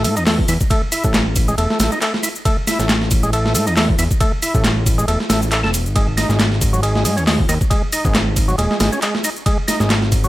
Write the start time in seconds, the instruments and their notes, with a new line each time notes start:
0.04 analog synth bass A2, tonewheel organ A3, open hi-hat, ride, shaker
0.16 analog synth bass E2, tonewheel organ D#4, ride, shaker
0.26 tonewheel organ A3, snare, clap, open hi-hat, shaker
0.39 kick
0.48 analog synth bass E2, tonewheel organ E4, open hi-hat, ride, shaker
0.60 kick, shaker
0.70 tonewheel organ A3, kick, ride, shaker
0.92 tonewheel organ E4, open hi-hat, ride, shaker
1.04 analog synth bass A1, tonewheel organ A3, kick, shaker
1.14 snare, clap, ride, shaker
1.36 kick, open hi-hat, ride, shaker
1.48 tonewheel organ G#3, shaker
1.58 analog synth bass E1, tonewheel organ A3, ride, shaker
1.70 snare
1.80 analog synth bass A1, tonewheel organ A3, snare, open hi-hat, ride, shaker
1.92 tonewheel organ D#4, shaker
2.01 tonewheel organ A3, clap, ride, shaker
2.14 snare
2.23 tonewheel organ E4, open hi-hat, ride, shaker
2.35 shaker
2.45 tonewheel organ A3, kick, ride, shaker
2.67 tonewheel organ E4, snare, open hi-hat, ride, shaker
2.79 analog synth bass A1, tonewheel organ A3, snare, shaker
2.89 snare, clap, ride, shaker
3.02 snare
3.11 kick, open hi-hat, ride, shaker
3.23 tonewheel organ G#3, shaker
3.33 tonewheel organ A3, ride, shaker
3.46 snare
3.55 analog synth bass A2, tonewheel organ A3, open hi-hat, ride, shaker
3.67 analog synth bass E2, tonewheel organ D#4, ride, shaker
3.77 tonewheel organ A3, snare, clap, open hi-hat, shaker
3.89 kick
3.99 analog synth bass E2, tonewheel organ E4, open hi-hat, ride, shaker
4.11 kick, shaker
4.20 tonewheel organ A3, kick, ride, shaker
4.42 tonewheel organ E4, open hi-hat, ride, shaker
4.54 analog synth bass A1, tonewheel organ A3, kick, shaker
4.64 snare, clap, ride, shaker
4.86 kick, open hi-hat, ride, shaker
4.98 tonewheel organ G#3, shaker
5.08 analog synth bass E1, tonewheel organ A3, ride, shaker
5.20 snare
5.30 analog synth bass A1, tonewheel organ A3, snare, open hi-hat, ride, shaker
5.42 shaker
5.52 tonewheel organ A3, clap, ride, shaker
5.63 analog synth bass E1, tonewheel organ A4, snare
5.74 open hi-hat, ride, shaker
5.86 analog synth bass G#1, shaker
5.96 tonewheel organ G#3, kick, ride, shaker
6.17 tonewheel organ D#4, snare, open hi-hat, ride, shaker
6.29 analog synth bass G#1, tonewheel organ G#3, snare, shaker
6.39 snare, clap, ride, shaker
6.52 snare
6.61 kick, open hi-hat, ride, shaker
6.73 tonewheel organ F#3, shaker
6.83 tonewheel organ G#3, ride, shaker
6.95 snare
7.05 analog synth bass G#2, tonewheel organ G#3, open hi-hat, ride, shaker
7.17 analog synth bass D#2, tonewheel organ C#4, ride, shaker
7.27 tonewheel organ G#3, snare, clap, open hi-hat, shaker
7.39 kick
7.49 analog synth bass D#2, tonewheel organ D#4, open hi-hat, ride, shaker
7.61 kick, shaker
7.70 tonewheel organ G#3, kick, ride, shaker
7.93 tonewheel organ D#4, open hi-hat, ride, shaker
8.05 analog synth bass G#1, tonewheel organ G#3, kick, shaker
8.15 snare, clap, ride, shaker
8.36 kick, open hi-hat, ride, shaker
8.48 tonewheel organ F#3, shaker
8.58 analog synth bass D#1, tonewheel organ G#3, ride, shaker
8.71 snare
8.80 analog synth bass G#1, tonewheel organ G#3, snare, open hi-hat, ride, shaker
8.92 tonewheel organ C#4, shaker
9.02 tonewheel organ G#3, clap, ride, shaker
9.15 snare
9.24 tonewheel organ D#4, open hi-hat, ride, shaker
9.36 shaker
9.46 tonewheel organ G#3, kick, ride, shaker
9.68 tonewheel organ D#4, snare, open hi-hat, ride, shaker
9.80 analog synth bass G#1, tonewheel organ G#3, snare, shaker
9.90 snare, clap, ride, shaker
10.02 snare
10.12 kick, open hi-hat, ride, shaker
10.24 tonewheel organ F#3, shaker